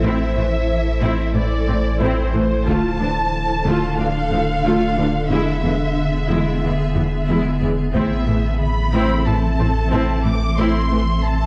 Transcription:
0.00 2.69 A1 medium
0.00 0.11 A2 soft
0.00 2.64 E3 medium
0.00 2.64 E4 medium
0.00 2.64 A4 medium
0.00 2.64 C5 medium
0.05 0.35 C4 soft
0.05 0.35 E4 medium
0.05 1.33 E5 medium
0.36 0.44 A2 soft
0.36 0.45 E3 soft
0.36 0.45 A3 soft
1.02 1.10 A2 medium
1.02 1.33 C4 medium
1.02 1.33 E4 medium
1.35 1.43 A2 soft
1.35 1.43 E3 soft
1.35 1.43 A3 soft
1.35 2.00 D5 medium
1.68 1.76 A2 soft
1.68 1.76 A3 soft
1.68 1.76 C4 soft
2.01 2.09 A2 medium
2.01 2.32 C4 soft
2.01 2.32 E4 medium
2.01 2.66 C5 medium
2.34 2.42 A2 soft
2.34 2.42 E3 medium
2.34 2.42 A3 soft
2.67 5.33 D1 medium
2.67 2.75 D2 medium
2.67 7.91 D3 medium
2.67 2.98 A3 medium
2.67 5.32 D4 medium
2.67 2.98 F4 medium
2.67 5.28 A4 medium
2.67 5.31 F5 medium
2.67 4.00 A5 medium
2.67 taiko soft
3.00 3.08 D2 soft
3.00 3.08 E3 soft
3.00 3.08 D4 soft
3.66 3.74 D2 medium
3.66 3.97 A3 medium
3.66 3.97 F4 medium
3.99 4.07 D2 soft
3.99 4.08 E3 soft
3.99 4.08 D4 soft
3.99 5.29 F5 medium
4.31 4.39 D2 soft
4.31 4.41 E3 soft
4.31 4.40 F3 soft
4.64 4.72 D2 medium
4.64 4.96 A3 medium
4.64 4.96 F4 soft
4.98 5.06 D2 soft
4.98 5.06 E3 soft
4.98 5.07 D4 soft
5.30 7.97 E1 medium
5.30 5.38 E2 soft
5.30 5.62 G#3 soft
5.30 7.95 B3 medium
5.30 5.62 E4 soft
5.30 7.95 G#4 medium
5.30 7.95 E5 medium
5.30 7.58 E5 medium
5.63 5.71 E2 soft
5.63 5.72 E3 soft
5.63 5.72 G#3 soft
6.30 6.38 E2 soft
6.30 6.61 G#3 soft
6.30 6.61 E4 soft
6.63 6.71 E2 soft
6.63 6.71 E3 soft
6.63 6.71 G#3 soft
6.96 7.04 E2 soft
6.96 7.04 E3 soft
6.96 7.04 B3 soft
7.29 7.37 E2 soft
7.29 7.60 G#3 soft
7.29 7.60 E4 soft
7.62 7.70 E2 soft
7.62 7.70 E3 soft
7.62 7.70 G#3 soft
7.95 11.46 A1 medium
7.95 8.03 A2 medium
7.95 11.46 E3 medium
7.95 11.46 C4 medium
7.95 8.26 C4 soft
7.95 8.26 E4 soft
7.95 11.46 A4 medium
7.95 8.57 E5 medium
7.95 11.46 E5 medium
7.95 taiko medium
8.28 8.36 A2 soft
8.28 8.36 E3 soft
8.28 8.36 A3 soft
8.61 9.27 B5 medium
8.94 9.02 A2 medium
8.94 9.25 C4 medium
8.94 9.25 E4 soft
9.26 9.34 A2 soft
9.26 9.35 E3 soft
9.26 9.35 A3 soft
9.26 10.26 A5 medium
9.60 9.68 A2 soft
9.60 9.68 A3 soft
9.60 9.68 C4 soft
9.92 10.00 A2 medium
9.92 10.23 C4 medium
9.92 10.23 E4 soft
10.25 10.33 A2 soft
10.25 10.34 E3 soft
10.25 10.34 A3 soft
10.25 10.58 D6 medium
10.58 10.66 A2 medium
10.58 10.89 C4 soft
10.58 10.89 E4 soft
10.58 11.25 C6 medium
10.92 11.00 A2 soft
10.92 11.00 E3 soft
10.92 11.00 A3 soft
11.24 11.46 A5 medium

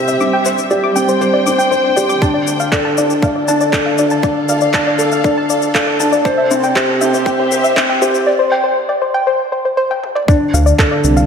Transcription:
0.00 0.14 C2 loud
0.00 0.21 C3 medium
0.00 0.21 C4 medium
0.00 1.01 C4 medium
0.00 0.23 G4 medium
0.00 1.01 G4 medium
0.00 0.22 C5 medium
0.00 1.01 E5 medium
0.08 0.13 E5 medium
0.08 shaker soft
0.20 2.23 G3 medium
0.20 0.35 C4 medium
0.20 0.23 D6 loud
0.20 shaker soft
0.33 7.06 D4 medium
0.33 0.40 G5 loud
0.45 0.64 G1 loud
0.45 0.53 C5 medium
0.45 shaker medium
0.58 shaker soft
0.71 0.95 G4 medium
0.71 0.76 D5 medium
0.71 shaker soft
0.84 0.86 D6 loud
0.88 3.06 C5 medium
0.96 1.15 F1 medium
0.96 1.20 C4 medium
0.96 1.03 G5 loud
0.96 3.40 G5 medium
0.96 shaker medium
1.09 1.16 C5 medium
1.09 shaker soft
1.21 1.45 C5 medium
1.21 shaker soft
1.33 1.43 G1 medium
1.33 1.38 D5 medium
1.46 1.65 G1 medium
1.46 1.71 C4 medium
1.46 1.49 D6 medium
1.46 shaker medium
1.58 1.66 G5 medium
1.58 shaker soft
1.71 1.79 C5 medium
1.71 1.86 C5 medium
1.71 shaker soft
1.96 2.16 G1 medium
1.96 2.21 G4 medium
1.96 2.01 D5 medium
1.96 shaker medium
2.09 2.12 D6 medium
2.09 shaker soft
2.21 6.25 D3 medium
2.21 2.37 D4 medium
2.21 2.29 A5 loud
2.21 kick loud
2.21 shaker soft
2.34 2.42 D5 medium
2.47 2.66 D2 medium
2.47 shaker medium
2.59 7.06 A4 medium
2.59 2.65 F5 medium
2.59 shaker soft
2.72 2.97 A4 medium
2.72 2.79 D5 medium
2.72 kick loud
2.72 clap medium
2.72 shaker soft
2.85 2.92 A5 loud
2.97 3.16 C2 medium
2.97 3.22 D4 medium
2.97 3.05 D5 medium
2.97 shaker medium
3.10 shaker soft
3.22 3.47 D5 medium
3.22 3.28 F5 medium
3.22 kick loud
3.22 shaker soft
3.35 3.45 D2 medium
3.35 3.43 D5 medium
3.48 3.67 D2 medium
3.48 3.72 D4 medium
3.48 3.55 A5 loud
3.48 shaker medium
3.61 3.68 D5 medium
3.61 shaker soft
3.73 3.97 A4 medium
3.73 kick loud
3.73 clap medium
3.73 shaker soft
3.86 3.91 F5 medium
3.98 4.17 D2 loud
3.98 4.13 D4 medium
3.98 4.06 D5 medium
3.98 shaker medium
4.03 6.25 F5 medium
4.10 4.18 A5 loud
4.10 shaker soft
4.23 4.31 D5 medium
4.23 kick loud
4.23 shaker soft
4.49 4.68 D2 medium
4.49 4.63 D5 medium
4.49 4.54 F5 medium
4.49 shaker medium
4.61 4.69 D5 medium
4.61 shaker soft
4.74 4.98 D4 medium
4.74 4.82 A5 loud
4.74 kick loud
4.74 clap medium
4.74 shaker soft
4.87 4.94 D5 medium
4.99 5.18 C2 medium
4.99 5.13 A4 medium
4.99 shaker medium
5.12 5.17 F5 medium
5.12 shaker soft
5.24 5.39 D4 medium
5.24 5.32 D5 medium
5.24 kick loud
5.24 shaker soft
5.37 5.46 D2 medium
5.37 5.45 A5 loud
5.50 5.69 D2 medium
5.50 5.57 D5 medium
5.50 shaker medium
5.62 shaker soft
5.75 5.99 A4 medium
5.75 5.80 F5 medium
5.75 kick loud
5.75 clap medium
5.75 shaker soft
5.87 5.95 D5 medium
6.00 6.19 D2 loud
6.00 6.24 D4 medium
6.00 6.07 A5 medium
6.00 shaker medium
6.12 6.20 D5 medium
6.12 shaker soft
6.25 8.27 C3 medium
6.25 6.49 C5 loud
6.25 kick loud
6.25 shaker soft
6.38 6.43 E5 medium
6.51 6.69 C2 medium
6.51 6.75 C4 loud
6.51 6.58 C5 medium
6.51 shaker medium
6.63 6.71 G5 loud
6.63 shaker soft
6.76 7.00 G4 medium
6.76 8.27 G4 medium
6.76 6.83 C5 medium
6.76 kick medium
6.76 clap medium
6.76 shaker soft
6.89 8.27 C4 medium
7.01 7.20 G1 medium
7.01 7.16 C4 medium
7.01 7.06 E5 medium
7.01 shaker medium
7.14 7.21 C5 medium
7.14 8.27 E5 medium
7.14 shaker soft
7.26 7.33 G5 loud
7.26 kick medium
7.26 shaker soft
7.39 7.48 C2 medium
7.39 7.46 C5 medium
7.52 7.71 C2 medium
7.52 7.66 C5 medium
7.52 shaker medium
7.64 7.69 E5 medium
7.64 shaker soft
7.76 8.01 C4 medium
7.76 7.84 C5 medium
7.76 kick medium
7.76 clap medium
7.76 shaker soft
7.89 7.97 G5 medium
8.02 8.21 C2 loud
8.02 8.16 G4 medium
8.02 8.09 C5 medium
8.02 shaker medium
8.14 shaker soft
8.27 8.32 D5 medium
8.39 8.47 C5 medium
8.52 8.59 G5 loud
8.64 8.71 C5 medium
8.89 8.94 D5 medium
9.02 9.09 C5 medium
9.14 9.22 G5 loud
9.27 9.35 C5 medium
9.52 9.60 C5 medium
9.65 9.68 C5 medium
9.77 9.83 C5 loud
9.91 9.96 G5 medium
9.91 high tom soft
10.04 mid tom medium
10.15 10.21 D5 medium
10.15 mid tom medium
10.28 11.26 D3 medium
10.28 10.43 D4 medium
10.28 10.36 D5 medium
10.28 kick loud
10.28 shaker soft
10.54 10.73 D2 medium
10.54 10.59 F5 medium
10.54 shaker medium
10.66 10.74 D5 medium
10.66 shaker soft
10.78 11.03 A4 medium
10.78 10.86 A5 loud
10.78 kick loud
10.78 clap medium
10.78 shaker soft
10.91 10.99 D5 medium
11.04 11.23 C2 medium
11.04 11.26 D4 medium
11.04 shaker medium
11.17 11.22 F5 medium
11.17 shaker soft

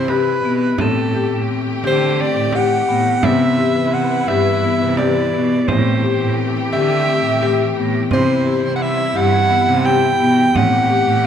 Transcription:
0.00 0.40 C3 medium
0.00 11.27 E3 medium
0.00 0.77 G3 medium
0.00 0.78 E4 medium
0.00 0.11 C5 medium
0.08 0.39 G4 medium
0.08 0.80 B4 medium
0.08 frame drum soft
0.45 0.77 B2 medium
0.45 0.75 B3 medium
0.78 1.11 A2 medium
0.78 3.22 A3 medium
0.78 1.09 C4 medium
0.78 3.22 G4 medium
0.78 1.46 A4 medium
0.78 frame drum medium
1.15 1.44 G4 medium
1.32 1.64 A2 medium
1.49 1.80 C4 medium
1.49 frame drum soft
1.84 2.33 D3 medium
1.84 2.14 G4 medium
1.84 2.23 C5 medium
1.84 frame drum soft
2.19 2.49 C4 medium
2.19 2.57 D5 medium
2.19 frame drum soft
2.37 2.85 A2 medium
2.53 2.84 G4 medium
2.53 3.26 F#5 medium
2.53 frame drum soft
2.89 3.21 A2 medium
2.89 3.19 B3 medium
3.23 3.56 C3 medium
3.23 3.54 B3 medium
3.23 5.65 E4 medium
3.23 5.66 B4 medium
3.23 3.95 E5 medium
3.23 frame drum medium
3.59 3.89 G4 medium
3.76 4.25 C3 medium
3.93 4.24 C4 medium
3.93 4.29 F#5 medium
3.93 frame drum soft
4.28 4.61 G2 medium
4.28 4.59 G4 medium
4.28 4.97 E5 medium
4.28 frame drum soft
4.63 4.94 B3 medium
4.63 frame drum soft
4.82 5.30 C3 medium
4.97 5.29 G4 medium
4.97 5.69 D5 medium
4.97 frame drum soft
5.34 5.66 B2 medium
5.34 5.63 B3 medium
5.67 6.01 A2 medium
5.67 8.09 A3 medium
5.67 5.98 C4 medium
5.67 8.10 G4 medium
5.67 6.38 C5 medium
5.67 frame drum medium
6.03 6.33 G4 medium
6.21 6.53 A2 medium
6.38 6.67 C4 medium
6.73 7.21 D3 medium
6.73 7.02 G4 medium
6.73 7.74 E5 loud
6.73 frame drum soft
7.08 7.37 C4 medium
7.25 7.74 A2 medium
7.42 7.72 G4 medium
7.42 frame drum soft
7.77 8.10 A2 medium
7.77 8.07 B3 medium
8.11 8.44 C3 medium
8.11 10.54 G3 medium
8.11 8.41 C4 medium
8.11 10.54 E4 medium
8.11 8.72 C5 medium
8.11 frame drum soft
8.46 8.76 G4 medium
8.65 9.13 C3 medium
8.76 8.84 F#5 medium
8.80 9.10 C4 medium
8.80 9.18 E5 medium
8.80 frame drum soft
9.15 9.49 G2 medium
9.15 9.45 G4 medium
9.15 9.87 F#5 loud
9.15 frame drum soft
9.50 9.80 B3 medium
9.50 frame drum soft
9.68 10.16 C3 medium
9.85 10.15 G4 medium
9.85 10.58 G5 loud
9.85 frame drum soft
10.20 10.53 B2 medium
10.20 10.50 B3 medium
10.55 10.88 A2 medium
10.55 11.27 A3 medium
10.55 10.84 C4 medium
10.55 11.27 G4 medium
10.55 11.27 F#5 medium
10.55 frame drum medium
10.90 11.20 G4 medium
11.08 11.27 A2 medium

